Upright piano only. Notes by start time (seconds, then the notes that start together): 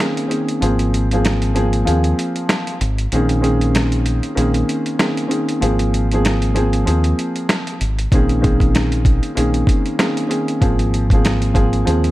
Already playing: D#3
0.00 A#3 C4 C#4 G#4
0.27 D#3 A#3 C4 C#4 G#4
0.61 F3 A#3 C4 G#4
1.12 F3 A#3 C4 G#4
1.54 F3 A#3 C4 G#4
1.85 F3 A#3 C4 G#4
3.12 D#3 A#3 C4 C#4 G#4
3.41 D#3 A#3 C4 C#4 G#4
4.35 D#3 A#3 C4 C#4 G#4
4.98 D#3 A#3 C4 C#4 G#4
5.27 D#3 A#3 C4 C#4 G#4
5.61 F3 A#3 C4 G#4
6.12 F3 A#3 C4 G#4
6.54 F3 A#3 C4 G#4
6.85 F3 A#3 C4 G#4
8.13 D#3 A#3 C4 C#4 G#4
8.41 D#3 A#3 C4 C#4 G#4
9.35 D#3 A#3 C4 C#4 G#4
9.98 D#3 A#3 C4 C#4 G#4
10.27 D#3 A#3 C4 C#4 G#4
10.61 F3 A#3 C4 G#4
11.12 F3 A#3 C4 G#4
11.54 F3 A#3 C4 G#4
11.85 F3 A#3 C4 G#4